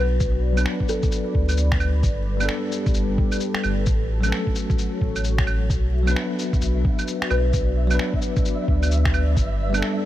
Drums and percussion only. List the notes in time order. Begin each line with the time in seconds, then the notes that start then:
0.20 kick, shaker
0.57 claves, shaker
0.66 finger snap
0.80 kick
0.88 shaker
1.03 kick, shaker
1.12 shaker
1.35 kick
1.49 claves, shaker
1.57 shaker
1.72 finger snap, kick
1.80 claves, shaker
2.03 kick, shaker
2.40 claves, shaker
2.49 finger snap
2.72 shaker
2.86 kick, shaker
2.94 shaker
3.18 kick
3.32 claves, shaker
3.40 shaker
3.54 finger snap
3.63 claves, shaker
3.86 kick, shaker
4.24 claves, shaker
4.32 finger snap
4.47 kick
4.55 shaker
4.70 kick, shaker
4.79 shaker
5.01 kick
5.16 claves, shaker
5.24 shaker
5.38 finger snap, kick
5.47 claves, shaker
5.70 kick, shaker
6.07 claves, shaker
6.17 finger snap
6.39 shaker
6.53 kick, shaker
6.61 shaker
6.85 kick
6.99 claves, shaker
7.08 shaker
7.22 finger snap
7.30 claves, shaker
7.53 kick, shaker
7.91 claves, shaker
7.99 finger snap
8.14 kick
8.22 shaker
8.36 kick, shaker
8.45 shaker
8.68 kick
8.83 claves, shaker
8.91 shaker
9.05 finger snap, kick
9.14 claves, shaker
9.37 kick, shaker
9.74 claves, shaker
9.82 finger snap